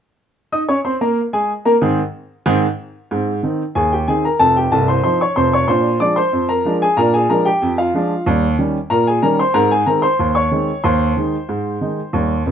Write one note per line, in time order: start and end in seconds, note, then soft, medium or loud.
0.52 0.61 D#4 medium
0.52 0.61 D#5 medium
0.52 0.61 D#6 medium
0.69 0.78 C#4 medium
0.69 0.77 C#5 medium
0.69 0.77 C#6 medium
0.85 0.94 C4 medium
0.85 0.94 C5 medium
0.85 0.94 C6 medium
1.01 1.19 A#3 medium
1.01 1.19 A#4 medium
1.01 1.19 A#5 medium
1.33 1.51 G#3 medium
1.33 1.51 G#4 medium
1.33 1.51 G#5 medium
1.65 1.74 A#3 medium
1.65 1.74 A#4 medium
1.65 1.74 A#5 medium
1.82 1.99 G#2 medium
1.82 1.99 D#3 medium
1.82 1.99 C4 medium
1.82 1.99 G#4 medium
2.46 2.64 G#2 loud
2.46 2.64 D#3 medium
2.46 2.64 C4 medium
2.46 2.64 G#4 medium
3.11 3.38 G#2 medium
3.11 3.30 C4 soft
3.43 3.61 D#3 soft
3.43 3.61 C4 soft
3.43 3.62 D#4 soft
3.75 4.03 D#2 medium
3.75 3.91 G#4 medium
3.75 3.91 G#5 medium
3.92 4.08 G4 medium
3.92 4.08 G5 medium
4.08 4.26 D#3 soft
4.08 4.26 C4 soft
4.08 4.26 D#4 soft
4.08 4.23 G#4 medium
4.08 4.24 G#5 medium
4.25 4.40 A#4 medium
4.25 4.40 A#5 medium
4.39 4.65 F1 medium
4.39 4.65 F2 medium
4.39 4.55 A4 medium
4.39 4.56 A5 medium
4.57 4.72 G4 medium
4.57 4.72 G5 medium
4.72 4.98 C1 medium
4.72 4.98 C2 medium
4.72 4.88 A4 medium
4.72 4.88 A5 medium
4.88 5.03 C5 medium
4.88 5.02 C6 medium
5.04 5.22 F3 soft
5.04 5.22 C4 soft
5.04 5.22 D#4 soft
5.04 5.20 C5 medium
5.04 5.20 C6 medium
5.21 5.36 C#5 medium
5.21 5.37 C#6 medium
5.36 5.62 F1 medium
5.36 5.62 F2 medium
5.36 5.52 C5 medium
5.36 5.52 C6 medium
5.53 5.69 C#5 medium
5.53 5.69 C#6 medium
5.68 5.95 A#2 medium
5.68 5.87 D4 medium
5.68 5.99 C5 medium
5.68 5.99 C6 medium
6.00 6.18 F3 soft
6.00 6.18 G#3 soft
6.00 6.19 D4 soft
6.00 6.16 D5 medium
6.00 6.16 D6 medium
6.16 6.47 C5 medium
6.16 6.47 C6 medium
6.33 6.60 F2 medium
6.49 6.79 A#4 medium
6.49 6.75 A#5 medium
6.65 6.83 F3 soft
6.65 6.83 G#3 medium
6.65 6.84 D4 medium
6.82 6.97 G#4 medium
6.82 6.98 G#5 medium
6.97 7.25 A#2 medium
6.97 7.16 D4 medium
6.97 7.13 A#4 medium
6.97 7.13 A#5 loud
7.14 7.29 G#4 medium
7.14 7.30 G#5 medium
7.29 7.47 F3 soft
7.29 7.48 G#3 medium
7.29 7.48 D4 medium
7.29 7.45 A#4 medium
7.29 7.45 A#5 medium
7.45 7.76 G4 medium
7.45 7.71 G5 medium
7.62 7.89 F2 medium
7.78 8.23 F4 soft
7.78 8.24 F5 medium
7.94 8.12 F3 medium
7.94 8.12 G#3 soft
7.94 8.12 D4 medium
8.26 8.53 D#2 medium
8.26 8.45 G3 medium
8.59 8.76 D#3 soft
8.59 8.76 G3 soft
8.59 8.77 C#4 medium
8.90 9.17 A#2 medium
8.90 9.06 A#4 medium
8.90 9.06 A#5 medium
9.07 9.22 G#4 medium
9.07 9.23 G#5 medium
9.23 9.40 D#3 medium
9.23 9.40 G3 medium
9.23 9.41 C#4 medium
9.23 9.38 A#4 medium
9.23 9.38 A#5 medium
9.39 9.54 C5 medium
9.39 9.55 C6 medium
9.54 9.81 G#2 medium
9.54 9.73 C4 medium
9.54 9.70 A#4 medium
9.54 9.70 A#5 loud
9.71 9.86 G#4 medium
9.71 9.87 G#5 medium
9.86 10.04 D#3 soft
9.86 10.04 G#3 soft
9.86 10.05 C4 medium
9.86 10.02 A#4 medium
9.86 10.02 A#5 medium
10.02 10.33 C5 medium
10.02 10.33 C6 medium
10.19 10.46 D#2 medium
10.35 10.81 C#5 medium
10.35 10.81 C#6 medium
10.51 10.69 D#3 soft
10.51 10.69 G#3 soft
10.51 10.70 C4 soft
10.84 11.11 D#2 medium
10.84 12.52 C5 medium
10.84 12.39 C6 medium
11.17 11.34 D#3 soft
11.17 11.35 G#3 soft
11.17 11.35 D#4 soft
11.49 11.76 G#2 medium
11.81 11.99 D#3 soft
11.81 11.99 G#3 soft
11.81 11.99 D#4 soft
12.13 12.41 D#2 medium
12.13 12.33 G3 soft
12.46 12.52 F1 medium
12.46 12.52 F2 medium